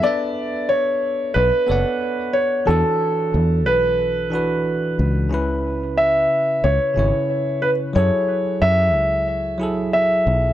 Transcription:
<<
  \new Staff \with { instrumentName = "Grand piano" } { \time 4/4 \key b \dorian \tempo 4 = 91 d''4 cis''4 b'4. cis''8 | a'4. b'2 r8 | r4 e''4 cis''4. b'8 | cis''4 e''2 e''4 | }
  \new Staff \with { instrumentName = "Tine electric piano" } { \time 4/4 \key b \dorian <b d' a' b' e''>2~ <b d' a' b' e''>8 <b a' cis'' d'' fis''>4. | <e d' fis' a'>2~ <e d' fis' a'>8 <e d' fis' b'>4. | <cis cis' e' b'>2~ <cis cis' e' b'>8 <cis cis' e' cis''>4. | <fis e' gis' a'>2~ <fis e' gis' a'>8 <fis e' gis' a'>4. | }
  \new Staff \with { instrumentName = "Fingered electric bass" } { \clef bass \time 4/4 \key b \dorian r2 b,,8 fis,,8 r4 | e,8 r8 e,8 b,,2 cis,8~ | cis,4. r8 cis,8 gis,,8 r4 | fis,8 r8 fis,8 cis,2 b,,8 | }
>>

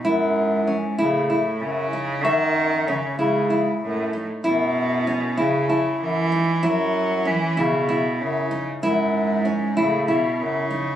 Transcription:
<<
  \new Staff \with { instrumentName = "Celesta" } { \time 7/8 \key fis \dorian \tempo 4 = 96 r2. r8 | cis'''2. r8 | r2 a''4.~ | a''4. r2 |
r2. r8 | }
  \new Staff \with { instrumentName = "Nylon-string guitar" } { \time 7/8 \key fis \dorian e'4 cis'8 e'8 e'4 dis'8 | e''4 cis'8 e'8 e'4 dis'8 | e'4 cis'8 e'8 e'4 dis'8 | e'4 cis'8 e'8 e'4 dis'8 |
e'4 cis'8 e'8 e'4 dis'8 | }
  \new Staff \with { instrumentName = "Cello" } { \clef bass \time 7/8 \key fis \dorian gis,4. a,4 cis4 | dis4 cis8 gis,4 a,8. r16 | b,4. cis4 e4 | fis4 e8 b,4 cis8. r16 |
gis,4. a,8 b,8 cis4 | }
  \new Staff \with { instrumentName = "Bass clarinet" } { \clef bass \time 7/8 \key fis \dorian fis,4. cis4 fis,8 r8 | fis,4. cis4 fis,8 r8 | fis,4. cis4 fis,8 r8 | fis,4. cis4 fis,8 r8 |
fis,4. cis4 fis,8 r8 | }
>>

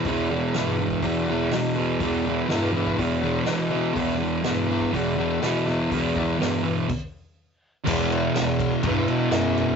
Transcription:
<<
  \new Staff \with { instrumentName = "Distorted electric guitar" } { \clef bass \time 4/4 \key e \minor \tempo 4 = 123 <e, b, e>8 <b, e>8 <e, b, e>8 <b, e>8 <e, b, e>8 <e, b, e>8 <e, b, e>8 <b, e>8 | <e, b, e>8 <b, e>8 <e, b, e>8 <b, e>8 <e, b, e>8 <e, b, e>8 <e, b, e>8 <b, e>8 | <e, b, e>8 <b, e>8 <e, b, e>8 <b, e>8 <e, b, e>8 <e, b, e>8 <e, b, e>8 <b, e>8 | <e, b, e>8 <b, e>8 <e, b, e>8 <b, e>8 r2 |
<e, b, e>2 <e, b, e>2 | }
  \new Staff \with { instrumentName = "Bass clarinet" } { \clef bass \time 4/4 \key e \minor e,4 g,4 e,4 b,4 | e,4 g,4 e,4 b,4 | e,4 g,4 e,4 b,4 | e,4 g,4 r2 |
e,4 e,4 g,8 b,8 fis,4 | }
  \new DrumStaff \with { instrumentName = "Drums" } \drummode { \time 4/4 <hho bd>4 <hho sn>8. bd16 <hho bd>4 <hho sn>4 | <hho bd>4 <hho sn>8. bd16 <hho bd>4 <hho sn>4 | <hho bd>4 <hho sn>8. bd16 <hho bd>4 <hho sn>8 sn8 | <hho bd>8 bd8 <hho sn>4 <cymc bd>4 r4 |
<cymc bd>8 cymc8 <cymc sn>8 <cymc bd>8 <cymc bd>8 cymc8 <cymc sn>8 cymc8 | }
>>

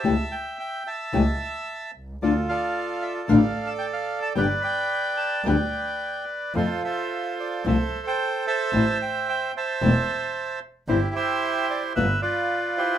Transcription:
<<
  \new Staff \with { instrumentName = "Bandoneon" } { \time 4/4 \key a \minor \tempo 4 = 111 << { a''8 g''8 g''8 a''2 r8 | d''8 f''4 e''8 f''8. a''16 g''16 f''8 a''16 | g''8 b''4 a''8 g''4. r8 | c''8 e''4 d''8 e''8. g''8. a''8~ |
a''8 g''8 g''8 a''2 r8 | c''8 e''4 d''8 e''8 d''4 c''8 | } \\ { e''4. e''2 r8 | <f' a'>8 <a' d''>4. <a' d''>2 | <b' d''>8 <d'' g''>4. <b' d''>2 | <f' a'>8 <a' c''>4. <a' c''>8. c''8. <c'' e''>8~ |
<c'' e''>4. <c'' e''>2 r8 | <e' g'>8 <g' c''>4. b'8 <f' b'>4 <e' g'>8 | } >> }
  \new Staff \with { instrumentName = "Nylon-string guitar" } { \time 4/4 \key a \minor <cis e a cis' g'>8 r4. <cis e a cis' g'>8 r4. | <d a d' f'>8 r4. <d a d' f'>8 r4. | <d g b d' g'>8 r4. <d g b d' g'>8 r4. | <c f a c' f'>8 r4. <c f a c' f'>8 r4. |
<e a c' e'>8 r4. <e a c' e'>8 r4. | <g c' e'>8 r4. <g b f'>8 r4. | }
  \new Staff \with { instrumentName = "Double bass" } { \clef bass \time 4/4 \key a \minor cis,8 r4. cis,8 r4 c,8 | d,8 r4. a,,8 r4. | g,,8 r4. d,8 r4. | f,8 r4. c,8 r4. |
a,,8 r4. e,,8 r4. | g,,8 r4. g,,8 r4. | }
>>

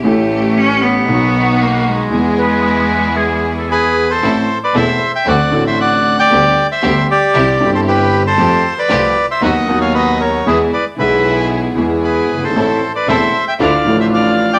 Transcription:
<<
  \new Staff \with { instrumentName = "Bandoneon" } { \time 4/4 \key a \minor \tempo 4 = 115 r1 | r2. <gis' b'>8. <a' c''>16~ | <a' c''>8. <b' d''>16 <c'' e''>8. <e'' g''>16 <d'' fis''>8. <c'' e''>16 <d'' fis''>8. <d'' g''>16~ | <d'' g''>8. <c'' e''>8. <g' d''>4~ <g' d''>16 <a' c''>16 <g' b'>8. <a' c''>16~ |
<a' c''>8. <b' d''>4 <c'' e''>16 <dis'' fis''>8. <cis'' f''>16 <b' dis''>8 <bes' cis''>8 | <gis' b'>8 <b' d''>8 <b' e''>4 r4 <gis' b'>8. <a' c''>16~ | <a' c''>8. <b' d''>16 <c'' e''>8. <e'' g''>16 <d'' f''>8. <c'' e''>16 <d'' f''>8. <d'' g''>16 | }
  \new Staff \with { instrumentName = "Flute" } { \time 4/4 \key a \minor r1 | r8 b'4. gis'8. a'16 gis'4 | r1 | r1 |
r1 | r1 | r1 | }
  \new Staff \with { instrumentName = "String section" } { \time 4/4 \key a \minor <a cis' g'>2 <b dis' fis'>2 | <b e' gis'>1 | <c' e' a'>8 r8 <c' e' a'>8 r8 <c' d' fis'>8 <c' d' fis'>4. | <b d' g'>8 r8 <b d' g'>8 r8 <c' e' g'>8 <c' e' g'>4. |
<a f' g'>8 r8 <a f' g'>8 r8 <b dis' fis'>8 <b dis' fis'>4. | <b e' gis'>8 r8 <b e' gis'>4. <b e' gis'>4. | <c' e' a'>8 r8 <c' e' a'>8 r8 <d' e' f'>8 <d' f'>4. | }
  \new Staff \with { instrumentName = "Cello" } { \time 4/4 \key a \minor a4 cis'8 b4. bes8 gis8~ | gis2. r4 | r1 | r1 |
r1 | r1 | r1 | }
  \new Staff \with { instrumentName = "Upright piano" } { \clef bass \time 4/4 \key a \minor << { <a,, a, e a cis' g'>2 <b,, b, dis fis b fis'>2 | <e, e gis b gis'>1 | <a,, a, e a c' a'>8 r8 <e,, e, e a c' a'>8 r8 <d, d a c' fis'>8 <a,, a, d a c' fis'>4. | <d, d g b g'>8 r8 <d, d g b g'>8 r8 <c, c e g c' g'>8 <g,, g, e g c' g'>4. |
<f, f a c' g'>8 r8 <c, c f a c' g'>8 r8 <dis, dis fis b fis'>8 <dis, dis fis b fis'>4. | <e, e gis b gis'>8 r8 <b,, b, e gis b gis'>4. <e, e gis b gis'>4. | <a,, a, e a c' a'>8 r8 <e,, e, e a c' a'>8 r8 <d, d e a d' f'>8 <a,, a, f a d' f'>4. | } \\ { r1 | r1 | r1 | r1 |
r1 | r2. r8 r32 fis,,32 g,,32 gis,,32 | r1 | } >> }
  \new Staff \with { instrumentName = "Double bass" } { \clef bass \time 4/4 \key a \minor a,,2 b,,2 | e,1 | a,,8 r8 e,,8 r8 d,8 a,,4. | d,8 r8 d,8 r8 c,8 g,,4. |
f,8 r8 c,8 r8 dis,8 dis,4. | e,8 r8 b,,4. e,4 g,,8 | a,,8 r8 e,,8 r8 d,8 a,,4. | }
>>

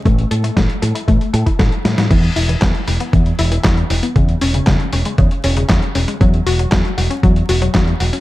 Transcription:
<<
  \new Staff \with { instrumentName = "Synth arpeggio sound" } { \time 4/4 \key a \lydian \tempo 4 = 117 a16 r16 a'16 a16 a16 r16 a'16 e'16 a16 r16 a'16 e'16 a'16 r16 e'16 a,16 | e16 r16 e'16 e16 e16 r16 e'16 b16 e16 r16 e'16 e16 e16 r16 e'16 b16 | cis16 r16 cis'16 cis16 cis16 r16 cis'16 gis16 cis16 r16 cis'16 cis16 cis16 r16 cis'16 gis16 | fis16 r16 fis'16 fis16 fis16 r16 fis'16 cis'16 fis16 r16 fis'16 fis16 fis16 r16 fis'16 cis'16 | }
  \new Staff \with { instrumentName = "Fingered electric bass" } { \clef bass \time 4/4 \key a \lydian a,,8 a,8 a,,8 a,8 a,,8 a,8 a,,8 a,8 | e,8 e,,8 e,8 e,,8 e,8 e,,8 e,8 e,,8 | e,8 e,,8 e,8 e,,8 e,8 e,,8 e,8 e,,8 | e,8 e,,8 e,8 e,,8 e,8 e,,8 e,8 e,,8 | }
  \new DrumStaff \with { instrumentName = "Drums" } \drummode { \time 4/4 <hh bd>16 hh16 hh16 hh16 <hh bd sn>16 hh16 hh16 hh16 <hh bd>16 hh16 hh16 <hh bd>16 <hh bd sn>16 hh16 <hh sn>16 <hh sn>16 | <cymc hh bd>16 hh16 hho16 hh16 <hc hh bd sn>16 hh16 hho16 hh16 <hh bd>16 hh16 hho16 hh16 <hc hh bd sn>16 hh16 hho16 hh16 | <hh bd>16 hh16 hho16 hh16 <hc hh bd sn>16 hh16 hho16 hh16 <hh bd>16 hh16 hho16 hh16 <hc hh bd sn>16 hh16 hho16 hh16 | <hh bd>16 hh16 hho16 hh16 <hc hh bd sn>16 hh16 hho16 hh16 <hh bd>16 hh16 hho16 hh16 <hc hh bd sn>16 hh16 hho16 hh16 | }
>>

